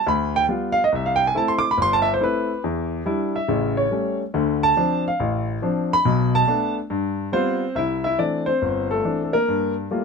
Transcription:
0.06 D2 B5
0.36 G5
0.49 G3 B3 F4
0.72 F5
0.84 D#5
0.92 C2 E5
1.06 F5
1.16 G5
1.27 G#5
1.35 A3 C4 E4 A5
1.48 C6
1.59 D6
1.71 B5
1.77 G1
1.82 C6
1.93 A5
2.02 E5
2.14 C5
2.20 A3 C4 E4 B4
2.64 E2
3.06 G3 D4 E4
3.36 E5
3.48 A1 C#3
3.77 C#5
3.91 G3 A3 C#4
4.34 D2 D3
4.63 A5
4.76 F3 C4 D4
5.08 F5
5.20 A1
5.62 F3 C4 D4
5.93 B5
6.05 B1 B2
6.35 A5
6.47 A3 B3 D4
6.90 G2
7.32 G3 B3 C4 F4 C5
7.75 C2 E4 E5
8.04 E4 E5
8.18 E3 A3 C4 D4 D5
8.46 C4 C5
8.62 G1
8.91 A3 A4
9.04 E3 A3 C4 D4
9.24 A4
9.33 A#3 A#4
9.48 G2
9.91 G3 A3 A#3 F4

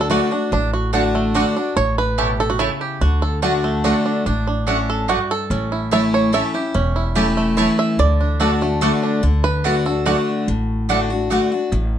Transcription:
Already playing: D2 D4
0.01 A4
0.10 D3 A3 D4 F#4 D5 F#5
0.31 D4 F#4
0.52 A1 A2 D4
0.73 F#4
0.93 D3 A3 D4 F#4 D5 F#5
1.15 A3
1.34 D3 A3 D4 F#4 D5 F#5
1.56 D4 F#4
1.76 A1 A2 C#5
1.98 B4
2.18 B2 A3 E4 G4 C#5 A5
2.40 A4
2.50 F#4
2.59 C#3 A3 E4 C#5 A5
2.81 G4
3.01 D2 D3 F#4
3.22 A4
3.42 D3 A3 D4 F#4 D5 F#5
3.64 A3
3.84 D3 A3 D4 F#4 D5 F#5
4.06 D4
4.26 A1 A2 D4
4.47 D4
4.67 A3 C#4 D4 F#4 D5 F#5
4.90 A4
5.08 G2 A3 F#4 D5 F#5
5.31 A4
5.50 A1 A2 C#4
5.72 E4
5.91 E3 A3 C#4 E4 C#5 E5 A5
6.14 C#5
6.32 E3 A3 C#4 E4 C#5 E5 A5
6.54 C#4 E4 G4
6.74 E1 E2 C#4
6.96 E4
7.15 E3 A3 C#4 E4 G4 C#5 A5
7.37 A3
7.57 E3 A3 C#4 E4 C#5 A5
7.79 E5
7.99 D2 D3 D5
8.21 D4
8.40 D3 A3 D4 F#4 A4 D5 F#5
8.61 A3 D4 F#4
8.81 D3 A3 D4 F#4 A4 D5 F#5
9.03 D4
9.23 D2 D3
9.44 B4
9.64 D3 A3 D4 F#4 D5 F#5
9.86 D4 F#4 A4
10.06 D3 A3 D4 F#4 D5 F#5
10.48 A1 A2
10.89 D3 A3 D4 F#4 D5 F#5
11.10 D4 F#4
11.30 D3 A3 D4 F#4 D5 F#5
11.52 D4 F#4
11.72 A1 A2

